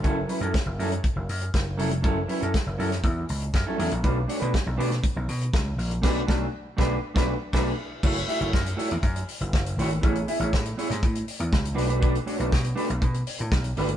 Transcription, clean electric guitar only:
X:1
M:4/4
L:1/16
Q:1/4=120
K:F#m
V:1 name="Clean electric guitar"
[F,CEA] z [F,CEB] [F,CEA] z2 [F,CEA] z6 z [F,CEA] z | [F,CEA] z [F,CEB] [F,CEA] z2 [F,CEA] z6 [F,CEA] [F,CEA] z | [A,DFB] z [A,DFc] [A,DFB] z2 [A,DFB] z8 z | [A,DFB]2 [A,DF]2 z2 [A,DFB]2 z [A,DFB]2 z [A,DFB]2 z2 |
[A,EFc] z [A,EFe] [A,EFc] z2 [A,EFc] z6 z [A,EFc] z | [B,EGc] z [B,EGe] [B,EGc] z2 [B,EGc] z6 z [A,DFB] [A,DFB] | [A,DFB] z [A,DFc] [A,DFB] z2 [A,DFB] z6 z [A,DFB] z |]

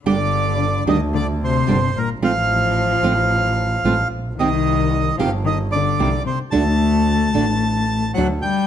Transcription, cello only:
X:1
M:4/4
L:1/8
Q:1/4=111
K:Gm
V:1 name="Cello" clef=bass
D,3 E, D, C,2 B,, | F,6- F, z | E,3 F, E, D,2 C, | A,6 ^F, G, |]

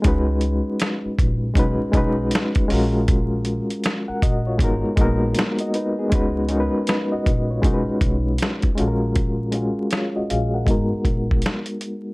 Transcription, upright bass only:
X:1
M:4/4
L:1/16
Q:"Swing 16ths" 1/4=79
K:C#mix
V:1 name="Upright bass" clef=bass
C,,3 z3 A,,,2 B,,, z B,,,2 z2 A,,,2- | A,,,3 z3 A,,,2 G,,, z A,,,2 z4 | C,,3 z3 A,,,2 B,,, z B,,,2 z2 A,,,2- | A,,,3 z3 A,,,2 G,,, z A,,,2 z4 |]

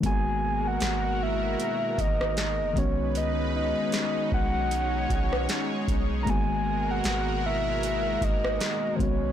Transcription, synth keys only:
X:1
M:4/4
L:1/8
Q:"Swing 16ths" 1/4=77
K:G#m
V:1 name="Synth keys"
[D,G,A,B,F]6- [D,G,A,B,F] [D,G,B,CF]- | [D,G,B,CF]6- [D,G,B,CF] z | [D,G,A,B,F]6- [D,G,A,B,F] [D,G,B,CF] |]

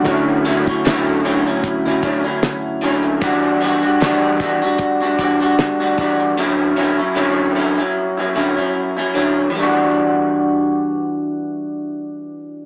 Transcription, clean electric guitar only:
X:1
M:4/4
L:1/16
Q:"Swing 16ths" 1/4=76
K:Edor
V:1 name="Clean electric guitar"
[D,F,CE]2 [D,F,CE] [F,CE] [D,F,CE]2 [D,F,CE] [F,CE]2 [F,CE] [D,F,CE] [F,CE]3 [D,F,CE]2 | [E,G,DF]2 [E,G,DF] [G,DF] [E,G,DF]2 [E,G,DF] [G,DF]2 [G,DF] [E,G,DF] [G,DF]2 [G,DF] [E,G,DF]2 | [D,F,CE]2 [D,F,CE] [F,CE] [D,F,CE]2 [D,F,CE] [F,CE]2 [F,CE] [D,F,CE] [F,CE]2 [F,CE] [D,F,CE]2 | [E,G,DF]16 |]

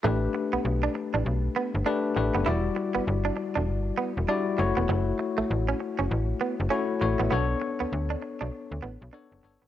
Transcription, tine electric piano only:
X:1
M:4/4
L:1/8
Q:"Swing 16ths" 1/4=99
K:Amix
V:1 name="Tine electric piano"
[A,DGB]4 z2 [A,DGB] [A,DGB] | [G,EFd]4 z2 [G,EFd] [A,EFc]- | [A,EFc]3 z3 [A,EFc] [A,EFc] | [B,DAc]4 z2 [B,DAc] [B,DAc] |]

